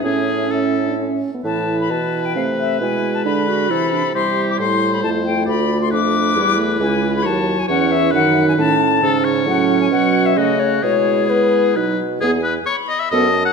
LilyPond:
<<
  \new Staff \with { instrumentName = "Flute" } { \time 3/4 \key a \major \tempo 4 = 133 e''4 e''4. r8 | \key a \minor a''8. b''16 a''8. g''16 f''8 e''8 | gis''8. a''16 b''2 | c'''8. d'''16 c'''8. b''16 a''8 g''8 |
b''8. c'''16 d'''2 | \key e \major gis''8. b''16 a''8. gis''16 fis''8 e''8 | fis''8. gis''16 a''4. r8 | fis''8. gis''16 fis''8. e''16 dis''8 cis''8 |
cis''4 b'4 r4 | gis''4 b''4 a''4 | }
  \new Staff \with { instrumentName = "Oboe" } { \time 3/4 \key a \major gis'4 a'4 r4 | \key a \minor b'2.~ | b'2 a'4 | g'4 c''2 |
d''4 b'2~ | \key e \major b'4 cis''4 cis''4 | b'4. r8 a'8 cis''8~ | cis''2 fis'4 |
gis'2 b'8 r8 | gis'8 b'8 cis''8 dis''16 e''16 dis''8. fis''16 | }
  \new Staff \with { instrumentName = "Clarinet" } { \time 3/4 \key a \major cis'2~ cis'8 r8 | \key a \minor e'2 c'4 | e'4 d'8 fis'8 e'8 d'8 | e'2. |
f'4 d'4 e'4~ | \key e \major e'2 cis'4 | dis'4 cis'4 cis'4 | cis'2~ cis'8 r8 |
e'2 dis'8 r8 | gis'8 r4. a'8 r8 | }
  \new Staff \with { instrumentName = "French horn" } { \clef bass \time 3/4 \key a \major cis'4 cis'8. d'16 cis'8. b16 | \key a \minor e2 a4 | gis2 e4 | g2 a4~ |
a2 g8 a8 | \key e \major gis4 fis4 e4 | dis4. r8 cis4 | fis4 fis4 a4 |
gis2 fis8 r8 | b8 r4. b8 r8 | }
  \new Staff \with { instrumentName = "Bassoon" } { \clef bass \time 3/4 \key a \major a,2~ a,8 r8 | \key a \minor a,4 b,4 c4 | b,4 d4 c4 | c4 a,4 f,4 |
d,4 f,4 e,4 | \key e \major cis,4 dis,4 e,4 | fis,4 a,4 gis,4 | a,4 b,4 cis4 |
b,4 b4 b,4 | e,4 r4 fis,4 | }
>>